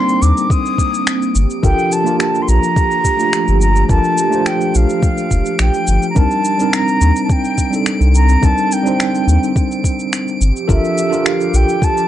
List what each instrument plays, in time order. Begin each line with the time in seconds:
Already playing: tine electric piano G3 C4 D4 D#4 A4 A#4 C5, analog synth pad A#3 C4, flute C6, synth texture D7
0.09 shaker
0.22 sub bass D#2, flute D6, shaker
0.37 shaker
0.50 flute D#6, kick, shaker
0.66 shaker
0.78 kick, shaker
0.94 shaker
1.07 finger snap, shaker
1.22 shaker
1.35 sub bass G1, analog synth pad F3 G4, shaker
1.50 shaker
1.63 sub bass G1, tine electric piano D4 F4 G4 A4 A#4, flute G5, kick, shaker
1.79 shaker
1.92 flute A5, shaker
2.04 tine electric piano A#3 D4 F4 G4, shaker
2.09 tine electric piano A#4
2.20 flute A5, finger snap, shaker
2.35 shaker
2.42 flute C6
2.48 sub bass A#1, flute A#5, shaker
2.63 shaker
2.76 kick, shaker
2.91 shaker
3.05 kick, shaker
3.17 tine electric piano A3 D4 F4 G4, shaker
3.33 finger snap, shaker
3.48 sub bass G1, shaker
3.61 flute A#5, shaker
3.76 shaker
3.89 sub bass G1, tine electric piano D4 F4 G4 A4 A#4, flute A5, kick, shaker
4.04 shaker
4.18 shaker
4.30 tine electric piano A3 D4 F4 G4, shaker
4.35 tine electric piano C5
4.46 flute G5, finger snap, shaker
4.61 shaker
4.75 sub bass A#1, flute F5, shaker
4.90 shaker
5.03 kick, shaker
5.18 shaker
5.31 sub bass F1, kick, shaker
5.46 shaker
5.59 sub bass A#1, flute G5, finger snap, shaker
5.74 shaker
5.87 sub bass G1, shaker
6.02 shaker
6.10 flute A#5
6.15 sub bass C2, tine electric piano G3 C4 D4 D#4 A#4, analog synth pad C4, flute A5, kick, shaker
6.31 shaker
6.45 shaker
6.57 tine electric piano G3 C4 D4 D#4, shaker
6.62 tine electric piano A#4
6.73 flute A#5, finger snap, shaker
6.88 shaker
7.01 sub bass D#2, shaker
7.16 shaker
7.24 flute A5
7.29 flute G5, kick, shaker
7.44 shaker
7.58 kick, shaker
7.71 tine electric piano G3 C4 D4 D#4, shaker
7.75 tine electric piano A4
7.86 finger snap, shaker
8.00 sub bass C2, shaker
8.15 flute A#5, shaker
8.29 shaker
8.42 sub bass C2, tine electric piano G3 C4 D4 D#4 A#4, flute A5, kick, shaker
8.58 shaker
8.72 flute G5, shaker
8.83 tine electric piano G3 C4 D4 D#4, shaker
8.88 tine electric piano C5
9.00 finger snap, shaker
9.15 shaker
9.27 sub bass D#2, shaker
9.43 shaker
9.56 kick, shaker
9.71 shaker
9.84 kick, shaker
9.99 shaker
10.13 finger snap, shaker
10.28 shaker
10.41 sub bass G1, analog synth pad F3 G4, shaker
10.56 shaker
10.68 sub bass G1, tine electric piano D4 F4 G4 A4 A#4, flute E5, kick, shaker
10.85 shaker
10.98 shaker
11.10 tine electric piano D4 F4 G4 A4, shaker
11.14 tine electric piano A#4
11.26 flute F5, finger snap, shaker
11.41 shaker
11.54 sub bass A#1, flute G5, shaker
11.69 shaker
11.82 flute A5, kick, shaker
11.97 shaker